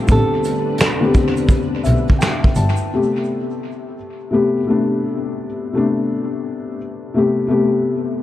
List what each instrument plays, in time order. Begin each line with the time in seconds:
Already playing: string machine G3 A3, felt piano A3 D4 G4
0.07 double bass A1, felt piano D3 B3 C4 G4, string machine D3 D4 B4, kick, closed hi-hat, shaker
0.12 nylon-string guitar A4
0.44 closed hi-hat, shaker
0.78 finger snap, snare, closed hi-hat, shaker
1.01 felt piano D3 B3 C4 G4
1.14 felt piano D3 B3 C4, kick, closed hi-hat, shaker
1.18 felt piano G4
1.37 closed hi-hat, shaker
1.49 kick, closed hi-hat, shaker
1.84 double bass B1, felt piano E5, closed hi-hat, shaker
2.08 kick, closed hi-hat
2.19 felt piano G5, finger snap, snare, closed hi-hat, shaker
2.44 kick
2.55 double bass G1, felt piano A5, closed hi-hat, shaker
2.76 shaker
2.94 felt piano C3 A3 B3 G4
4.30 felt piano C3 A3 B3 G4
4.67 felt piano C3 A3 B3 D4
5.73 felt piano C3 A3 B3
5.77 felt piano D4
7.14 felt piano C3 A3 B3 G4
7.47 felt piano C3 A3 B3 G4